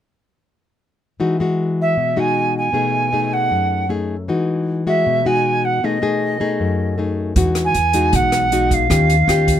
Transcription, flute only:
1.81 2.21 E5 medium
2.19 2.56 G#5 medium
2.58 3.35 G#5 medium
3.33 3.90 F#5 medium
4.88 5.28 E5 medium
5.27 5.66 G#5 medium
5.65 5.86 F#5 medium
5.85 6.99 D#5 medium
7.65 8.17 G#5 loud
8.16 8.75 F#5 medium
8.74 9.60 F5 medium

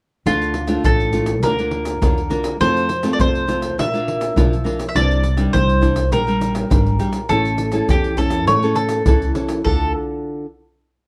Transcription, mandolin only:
0.27 0.85 F4 medium
0.85 1.40 A4 medium
1.43 2.60 A#4 medium
2.61 3.13 C5 medium
3.13 3.20 D5 medium
3.21 3.79 C5 medium
3.79 4.87 E5 medium
4.89 4.96 E5 medium
4.96 5.50 D5 medium
5.53 6.12 C5 medium
6.13 7.33 A#4 medium
7.29 7.90 A4 medium
7.90 8.17 G4 medium
8.18 8.47 A4 medium
8.48 8.75 C#5 medium
8.76 9.31 A4 medium
9.65 9.92 A4 medium

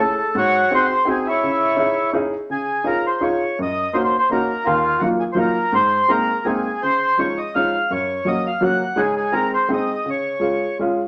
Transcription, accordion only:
0.00 0.36 A4 medium
0.37 0.87 F#4 medium
0.37 0.73 C#5 medium
0.74 1.09 C5 medium
1.10 1.28 G#4 medium
1.27 2.10 E4 medium
1.27 2.12 C#5 medium
2.51 2.88 G#4 medium
2.86 3.06 A#4 medium
3.07 3.23 C5 medium
3.23 3.59 C#5 medium
3.62 3.97 D#5 medium
3.94 4.02 C5 medium
4.04 4.17 C5 medium
4.19 4.29 C5 medium
4.32 4.67 A#4 medium
4.65 5.02 F4 medium
4.99 5.08 F#4 medium
5.20 5.25 G#4 medium
5.33 5.38 C5 medium
5.39 5.75 A#4 medium
5.75 6.11 C5 medium
6.09 6.46 A#4 medium
6.45 6.83 G#4 medium
6.82 7.19 C5 loud
7.19 7.39 C#5 medium
7.38 7.55 D#5 medium
7.55 7.92 F5 medium
7.92 8.28 C#5 medium
8.28 8.47 D#5 medium
8.47 8.64 F5 medium
8.64 9.00 F#5 medium
8.97 9.15 G#4 medium
9.17 9.34 G#4 medium
9.32 9.52 A#4 medium
9.54 9.71 C5 medium
9.73 10.10 D#5 medium
10.10 10.78 C#5 medium

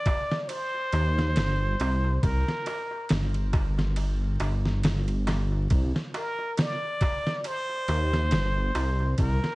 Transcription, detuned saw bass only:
0.93 1.38 D#2 medium
1.37 1.75 G1 loud
1.80 2.19 C2 medium
2.23 2.45 C2 loud
3.11 4.37 G1 loud
4.41 5.68 G1 loud
5.71 5.92 C2 medium
7.88 8.34 D#2 medium
8.32 8.71 G1 loud
8.75 9.14 C2 medium
9.18 9.40 C2 loud

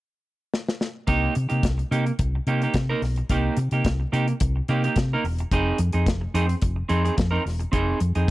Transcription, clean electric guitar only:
1.07 1.33 A#3 medium
1.07 1.34 D#4 medium
1.07 1.34 G4 loud
1.35 muted clean electric guitar stroke soft
1.49 1.64 A#3 soft
1.49 1.64 D#4 soft
1.49 1.64 G4 medium
1.78 muted clean electric guitar stroke soft
1.91 2.11 A#3 medium
1.91 2.06 D#4 medium
1.91 2.05 G4 medium
2.06 muted clean electric guitar stroke soft
2.20 muted clean electric guitar stroke soft
2.35 muted clean electric guitar stroke soft
2.48 2.63 A#3 medium
2.48 2.62 D#4 medium
2.48 2.62 G4 medium
2.63 2.75 A#3 medium
2.63 2.75 D#4 medium
2.63 2.76 G4 medium
2.89 3.02 A#3 medium
2.89 3.02 D#4 medium
2.89 3.03 A#4 loud
3.03 muted clean electric guitar stroke soft
3.18 muted clean electric guitar stroke soft
3.30 3.56 A#3 medium
3.30 3.56 D#4 medium
3.30 3.56 G4 medium
3.58 muted clean electric guitar stroke soft
3.73 3.87 A#3 medium
3.73 3.87 D#4 soft
3.73 3.87 G4 medium
4.00 muted clean electric guitar stroke soft
4.12 4.32 A#3 medium
4.12 4.28 D#4 medium
4.12 4.27 G4 medium
4.28 muted clean electric guitar stroke soft
4.41 muted clean electric guitar stroke soft
4.56 muted clean electric guitar stroke soft
4.69 4.84 A#3 medium
4.69 4.84 D#4 medium
4.69 4.83 G4 medium
4.84 4.96 A#3 soft
4.84 4.97 D#4 medium
4.84 4.98 G4 medium
4.99 muted clean electric guitar stroke soft
5.13 5.24 A#3 medium
5.13 5.24 D#4 medium
5.13 5.26 A#4 medium
5.25 muted clean electric guitar stroke soft
5.40 muted clean electric guitar stroke medium
5.52 5.78 C4 medium
5.52 5.78 D#4 medium
5.52 5.78 G#4 loud
5.80 muted clean electric guitar stroke soft
5.93 6.08 C4 soft
5.93 6.08 D#4 medium
5.93 6.08 G#4 medium
6.21 muted clean electric guitar stroke soft
6.34 6.54 C4 medium
6.34 6.48 D#4 medium
6.34 6.46 G#4 loud
6.47 muted clean electric guitar stroke soft
6.62 muted clean electric guitar stroke soft
6.76 muted clean electric guitar stroke soft
6.89 7.04 C4 medium
6.89 7.03 D#4 medium
6.89 7.03 G#4 medium
7.05 7.15 C4 soft
7.05 7.16 D#4 soft
7.05 7.16 G#4 medium
7.17 muted clean electric guitar stroke soft
7.31 7.43 C4 medium
7.31 7.44 D#4 medium
7.31 7.45 A#4 medium
7.44 muted clean electric guitar stroke soft
7.59 muted clean electric guitar stroke soft
7.72 7.98 C4 medium
7.72 7.99 D#4 medium
7.72 7.99 G#4 loud
8.01 muted clean electric guitar stroke soft
8.15 8.30 C4 soft
8.15 8.30 D#4 medium
8.15 8.30 G#4 medium

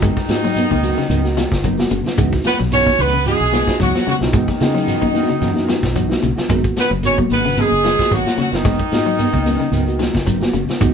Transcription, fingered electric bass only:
0.00 0.12 F#1 medium
0.29 0.64 G#2 medium
0.71 0.94 C#2 medium
1.10 1.44 C#2 loud
1.52 1.84 F#1 medium
1.91 2.03 F#1 loud
2.06 muted fingered electric bass stroke soft
2.18 2.41 C#2 loud
2.45 muted fingered electric bass stroke soft
2.60 2.93 B1 loud
2.99 3.33 C#2 medium
3.41 3.63 B1 medium
3.80 3.92 C#2 medium
4.07 muted fingered electric bass stroke soft
4.21 4.43 B1 medium
4.61 4.95 C#3 medium
5.02 5.25 F#2 medium
5.42 5.76 F#2 medium
5.83 6.16 B1 medium
6.23 6.35 B1 medium
6.50 6.72 G#1 loud
6.77 muted fingered electric bass stroke soft
6.91 7.24 F#1 loud
7.30 7.65 G#1 medium
7.72 7.94 F#1 medium
8.11 8.23 G#1 medium
8.38 muted fingered electric bass stroke soft
8.53 8.75 F#1 medium
8.92 9.27 G#2 medium
9.33 9.56 C#2 medium
9.72 10.07 C#2 medium
10.15 10.47 F#1 medium
10.54 10.66 F#1 loud
10.69 muted fingered electric bass stroke soft
10.81 10.94 C#2 loud

